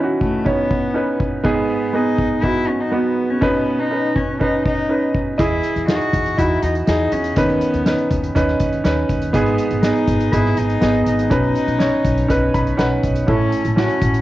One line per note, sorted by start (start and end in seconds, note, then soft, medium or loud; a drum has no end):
0.00 0.17 D#3 medium
0.00 0.45 C#4 medium
0.00 0.45 D#4 medium
0.00 1.47 E4 soft
0.00 0.40 F#4 medium
0.00 0.96 B4 medium
0.21 0.48 A3 medium
0.21 kick medium
0.45 1.20 B3 medium
0.45 0.85 C#4 medium
0.45 0.86 D#4 medium
0.45 0.86 C#5 medium
0.45 kick medium
0.71 kick medium
0.94 1.35 C#4 medium
0.94 1.35 D#4 medium
0.94 1.36 B4 medium
1.20 kick medium
1.43 2.14 G#2 medium
1.43 1.84 B3 medium
1.43 1.96 B3 medium
1.43 1.84 D#4 medium
1.43 1.85 G#4 medium
1.43 kick medium
1.93 2.34 B3 medium
1.93 2.45 D#4 medium
1.93 2.34 D#4 medium
1.93 2.34 G#4 medium
2.18 kick medium
2.42 2.83 B3 medium
2.42 2.83 D#4 medium
2.42 2.70 E4 medium
2.42 2.84 F#4 medium
2.42 kick medium
2.68 2.82 C#4 medium
2.81 2.94 D#4 medium
2.92 3.32 B3 medium
2.92 3.33 D#4 medium
2.92 3.33 F#4 medium
3.30 3.44 C#4 medium
3.41 4.12 B2 medium
3.41 3.81 B3 medium
3.41 3.82 C#4 medium
3.41 3.82 D#4 medium
3.41 3.82 B4 medium
3.41 kick medium
3.80 4.18 D#4 medium
3.91 4.31 C#4 medium
3.91 4.31 D#4 soft
3.91 4.32 B4 medium
4.16 4.41 C#4 medium
4.16 kick medium
4.39 4.80 C#4 medium
4.39 4.81 D#4 medium
4.39 4.64 D#4 medium
4.39 4.81 B4 medium
4.39 kick medium
4.66 5.12 D#4 medium
4.66 kick medium
4.89 5.30 C#4 medium
4.89 5.30 D#4 medium
4.89 5.30 B4 medium
5.15 kick medium
5.38 5.60 E2 medium
5.38 6.09 E3 soft
5.38 5.79 E4 medium
5.38 5.86 E4 medium
5.38 5.80 G#4 medium
5.38 5.79 D#5 medium
5.38 kick medium
5.38 closed hi-hat medium
5.63 closed hi-hat medium
5.76 5.97 E2 medium
5.76 closed hi-hat soft
5.87 6.28 D#4 medium
5.87 6.28 E4 medium
5.87 6.39 F#4 medium
5.87 6.29 G#4 medium
5.87 snare medium
5.87 closed hi-hat medium
6.01 closed hi-hat soft
6.13 6.33 E2 medium
6.13 kick medium
6.13 closed hi-hat medium
6.26 closed hi-hat soft
6.37 6.58 E2 medium
6.37 6.77 D#4 medium
6.37 6.78 E4 medium
6.37 6.62 E4 medium
6.37 6.78 F#4 medium
6.37 kick medium
6.37 closed hi-hat medium
6.62 6.83 E2 medium
6.62 6.74 D#4 medium
6.62 closed hi-hat medium
6.75 closed hi-hat soft
6.86 7.08 E2 medium
6.86 7.27 D#4 medium
6.86 7.14 D#4 medium
6.86 7.27 E4 medium
6.86 7.28 G#4 medium
6.86 snare medium
6.86 closed hi-hat medium
7.12 7.32 E2 medium
7.12 7.39 C#4 medium
7.12 closed hi-hat medium
7.24 closed hi-hat soft
7.36 7.57 D#2 medium
7.36 8.07 D#3 medium
7.36 8.36 B3 medium
7.36 7.76 C#4 medium
7.36 7.77 D#4 medium
7.36 7.77 B4 medium
7.36 kick medium
7.36 closed hi-hat medium
7.49 closed hi-hat soft
7.61 closed hi-hat medium
7.73 7.94 D#2 medium
7.73 closed hi-hat soft
7.86 8.26 C#4 medium
7.86 8.26 D#4 medium
7.86 8.27 B4 medium
7.86 snare medium
7.86 closed hi-hat medium
7.98 closed hi-hat soft
8.10 8.31 D#2 medium
8.10 kick medium
8.10 closed hi-hat medium
8.24 closed hi-hat soft
8.35 8.56 D#2 medium
8.35 8.75 C#4 medium
8.35 8.76 D#4 medium
8.35 8.76 B4 medium
8.35 kick medium
8.35 closed hi-hat medium
8.48 snare soft
8.60 8.80 D#2 medium
8.60 kick medium
8.60 closed hi-hat medium
8.73 closed hi-hat soft
8.84 9.05 D#2 medium
8.84 9.24 C#4 medium
8.84 9.25 D#4 medium
8.84 9.25 B4 medium
8.84 snare medium
8.84 closed hi-hat medium
9.09 9.30 D#2 medium
9.09 kick medium
9.09 closed hi-hat medium
9.22 closed hi-hat soft
9.33 9.54 G#1 medium
9.33 10.04 G#2 soft
9.33 9.74 B3 medium
9.33 9.80 B3 medium
9.33 9.74 D#4 medium
9.33 9.74 G#4 medium
9.33 kick medium
9.33 closed hi-hat medium
9.46 closed hi-hat soft
9.58 closed hi-hat medium
9.71 9.91 G#1 medium
9.71 closed hi-hat soft
9.83 10.23 B3 medium
9.83 10.24 D#4 medium
9.83 10.36 D#4 medium
9.83 10.24 G#4 medium
9.83 snare medium
9.83 closed hi-hat medium
9.96 closed hi-hat soft
10.08 10.28 G#1 medium
10.08 kick medium
10.08 closed hi-hat medium
10.21 closed hi-hat soft
10.32 10.53 G#1 medium
10.32 10.72 B3 medium
10.32 10.73 D#4 medium
10.32 10.60 E4 medium
10.32 10.73 G#4 medium
10.32 kick medium
10.32 closed hi-hat medium
10.45 snare soft
10.57 10.78 G#1 medium
10.57 11.07 D#4 medium
10.57 closed hi-hat medium
10.70 closed hi-hat soft
10.81 11.02 G#1 medium
10.81 11.21 B3 medium
10.81 11.22 D#4 medium
10.81 11.22 G#4 medium
10.81 snare medium
10.81 closed hi-hat medium
11.06 11.27 G#1 medium
11.06 12.75 D#4 medium
11.06 closed hi-hat medium
11.19 closed hi-hat soft
11.30 11.51 B1 medium
11.30 12.01 B2 medium
11.30 11.71 C#4 medium
11.30 11.71 D#4 medium
11.30 11.71 B4 medium
11.30 kick medium
11.30 closed hi-hat medium
11.44 closed hi-hat soft
11.55 closed hi-hat medium
11.68 11.88 B1 medium
11.68 closed hi-hat soft
11.79 12.20 C#4 medium
11.79 12.20 D#4 medium
11.79 12.21 C#5 medium
11.79 snare medium
11.79 closed hi-hat medium
12.05 12.25 B1 medium
12.05 kick medium
12.05 closed hi-hat medium
12.18 closed hi-hat soft
12.28 12.50 B1 medium
12.28 12.69 C#4 medium
12.28 12.69 D#4 medium
12.28 12.70 B4 medium
12.28 kick medium
12.28 closed hi-hat medium
12.54 12.75 B1 medium
12.54 12.77 B5 medium
12.54 kick medium
12.54 closed hi-hat medium
12.67 closed hi-hat soft
12.77 12.99 B1 medium
12.77 13.18 C#4 medium
12.77 13.18 D#4 medium
12.77 13.19 B4 medium
12.77 13.24 F#5 medium
12.77 snare medium
12.77 closed hi-hat medium
13.03 13.24 B1 medium
13.03 kick medium
13.03 closed hi-hat medium
13.15 closed hi-hat soft
13.27 13.48 A1 medium
13.27 13.98 A2 medium
13.27 13.67 C#4 medium
13.27 13.74 C#4 medium
13.27 13.68 E4 medium
13.27 13.68 A4 medium
13.27 kick medium
13.27 crash medium
13.52 closed hi-hat medium
13.65 13.85 A1 medium
13.65 closed hi-hat soft
13.76 14.17 C#4 medium
13.76 14.21 C#4 medium
13.76 14.17 E4 medium
13.76 14.17 F#4 medium
13.76 snare medium
13.89 closed hi-hat soft
14.01 14.21 A1 medium
14.01 kick medium
14.01 closed hi-hat medium
14.14 closed hi-hat soft